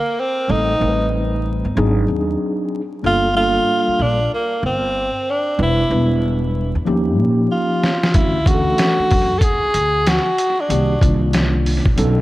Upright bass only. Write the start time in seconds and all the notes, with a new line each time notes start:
0.49 A1
0.81 A1
1.65 G1
1.77 G#1
2.08 D#2
3.04 G1
3.88 muted upright bass stroke
3.99 A#1
4.63 G1
5.59 E1
5.91 E1
6.75 E2
6.87 D#2
7.18 A#2
8.14 D2
8.99 muted upright bass stroke
9.12 F#2
9.74 D2
10.70 C2
11.02 C2
11.86 A#1
11.98 B1